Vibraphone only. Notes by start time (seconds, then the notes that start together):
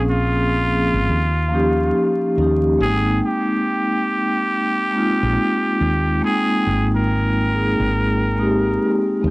Already playing: F3 A#3 C4 C#4 G#4
0.63 F3 A#3 C4
0.67 C#4 G#4
1.48 F3 A#3 C#4
1.53 D#4 G4
2.36 F3 A#3 C#4
2.41 D#4 G4
2.78 G#3 A#3 C4
2.83 D#4 G5
4.91 G#3 A#3 C4
4.96 D#4 F4
6.21 G#3 A#3 C4
6.26 D#4 G5
7.48 G#3 A#3 C4
7.53 D#4 G#4
8.35 G#3 A#3 C4
8.39 D#4 G4
9.21 G#3 A#3 C4
9.26 D#4